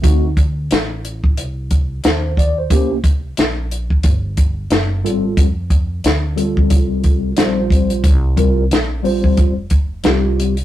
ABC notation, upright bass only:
X:1
M:4/4
L:1/8
Q:"Swing 16ths" 1/4=90
K:Cdor
V:1 name="Upright bass" clef=bass
D,,2 A,,,2 C,,2 E,,2 | C,,2 B,,,2 G,,,2 ^F,,, ^G,,, | F,,2 D,,2 C,,2 B,,,2 | C,,2 B,,,2 F,,,2 C,,2 |]